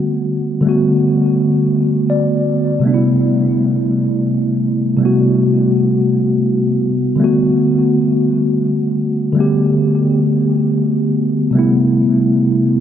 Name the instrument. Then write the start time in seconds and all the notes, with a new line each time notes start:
tine electric piano
Already playing: D3 G3 A3 B3 F#4
0.61 D3 G3
0.65 A3 B3 F#4
2.10 D5
2.79 C3 G3 A3
2.85 B3 D4
2.94 E4
4.97 C3 G3 A3
5.03 B3 F#4
7.16 D3 G3
7.20 A3 B3
7.24 F#4
9.33 D3 G3 A3
9.38 B3 G4
11.51 C3 G3
11.55 A3 B3 E4